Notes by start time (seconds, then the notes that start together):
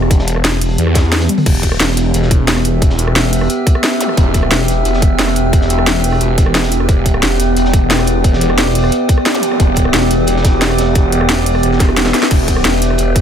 Already playing: E1 B3 G4 E5 A5
0.02 cross-stick
0.11 kick, closed hi-hat
0.19 snare
0.28 closed hi-hat
0.36 cross-stick
0.44 snare, closed hi-hat
0.61 closed hi-hat, open hi-hat
0.78 E2, closed hi-hat
0.87 cross-stick
0.95 kick, snare, closed hi-hat
1.12 snare, closed hi-hat, open hi-hat
1.20 snare, closed hi-hat
1.29 closed hi-hat, high tom
1.38 open hi-hat, mid tom
1.46 E1 B3 G4 E5, kick, closed hi-hat, crash
1.59 G4
1.63 kick, closed hi-hat
1.72 G5, cross-stick
1.80 E1, snare, closed hi-hat
1.97 snare, closed hi-hat
2.14 E1, closed hi-hat
2.22 snare
2.31 E5, kick, closed hi-hat
2.48 snare, closed hi-hat
2.57 cross-stick, snare
2.65 closed hi-hat
2.82 kick, closed hi-hat
2.90 snare
2.98 closed hi-hat
3.08 cross-stick
3.16 snare, closed hi-hat
3.33 closed hi-hat, open hi-hat
3.41 cross-stick
3.50 closed hi-hat
3.67 kick, closed hi-hat
3.75 cross-stick
3.83 snare, closed hi-hat
4.01 closed hi-hat, zap
4.09 cross-stick
4.17 E1, kick, closed hi-hat
4.34 kick, closed hi-hat
4.43 cross-stick
4.51 E1, snare, closed hi-hat
4.68 snare, closed hi-hat
4.85 E1, closed hi-hat
4.94 snare
5.02 kick, closed hi-hat
5.19 snare, closed hi-hat
5.28 cross-stick, snare
5.36 closed hi-hat
5.53 kick, closed hi-hat
5.61 snare
5.70 closed hi-hat
5.79 cross-stick
5.86 snare, closed hi-hat
6.04 closed hi-hat, open hi-hat
6.12 cross-stick
6.21 E1, closed hi-hat
6.38 kick, closed hi-hat
6.46 cross-stick
6.54 snare, closed hi-hat
6.63 snare, closed hi-hat
6.72 closed hi-hat
6.80 cross-stick
6.89 E1 D5, kick, closed hi-hat
7.06 kick, closed hi-hat
7.14 cross-stick
7.22 E1, snare, closed hi-hat
7.40 snare, closed hi-hat
7.57 E1, closed hi-hat
7.65 snare
7.73 kick, closed hi-hat
7.90 snare, closed hi-hat
7.99 cross-stick, snare
8.07 closed hi-hat
8.24 kick, closed hi-hat
8.33 snare
8.41 closed hi-hat
8.50 cross-stick
8.58 snare, closed hi-hat
8.75 closed hi-hat, open hi-hat
8.84 cross-stick
8.92 closed hi-hat
9.09 kick, closed hi-hat
9.18 cross-stick
9.26 snare, closed hi-hat
9.34 zap
9.43 closed hi-hat
9.51 cross-stick
9.60 E1, kick, closed hi-hat
9.76 kick, closed hi-hat
9.85 cross-stick
9.93 E1, snare, closed hi-hat
10.10 snare, closed hi-hat
10.27 E1, closed hi-hat
10.36 snare
10.44 kick, snare, closed hi-hat
10.62 snare, closed hi-hat
10.70 cross-stick, snare
10.78 snare, closed hi-hat
10.95 kick, snare, closed hi-hat
11.12 closed hi-hat
11.21 cross-stick
11.29 snare, closed hi-hat
11.46 closed hi-hat, open hi-hat
11.55 cross-stick
11.63 E1, closed hi-hat
11.71 snare
11.80 kick, snare, closed hi-hat
11.89 cross-stick
11.97 snare, closed hi-hat, open hi-hat
12.06 snare, closed hi-hat
12.14 snare, closed hi-hat
12.22 snare, open hi-hat
12.31 E1 E5, kick, closed hi-hat, crash
12.48 kick, closed hi-hat
12.56 cross-stick
12.65 E1, snare, closed hi-hat
12.81 snare, closed hi-hat
12.90 cross-stick
12.98 E1, closed hi-hat
13.16 kick, closed hi-hat